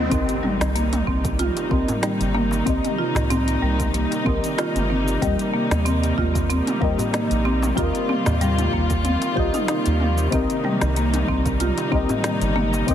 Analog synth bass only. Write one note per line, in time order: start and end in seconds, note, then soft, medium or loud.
0.11 0.25 C2 loud
0.61 1.02 C2 medium
1.07 1.51 C2 loud
1.71 1.85 C2 medium
2.20 2.62 G1 loud
2.67 2.80 C2 loud
3.16 3.57 C2 medium
3.62 4.06 C2 loud
4.26 4.40 C2 medium
4.75 5.17 G1 loud
5.22 5.36 D#2 loud
5.71 6.13 D#2 medium
6.18 6.61 D#2 loud
6.81 6.95 D#2 medium
7.31 7.72 A#1 loud
7.77 7.91 D#2 loud
8.27 8.68 D#2 medium
8.73 9.16 D#2 loud
9.37 9.51 C2 medium
9.87 10.28 D#2 medium
10.33 10.46 C2 loud
10.82 11.23 C2 medium
11.28 11.72 C2 loud
11.92 12.06 C2 medium
12.41 12.83 G1 loud
12.88 12.95 C2 loud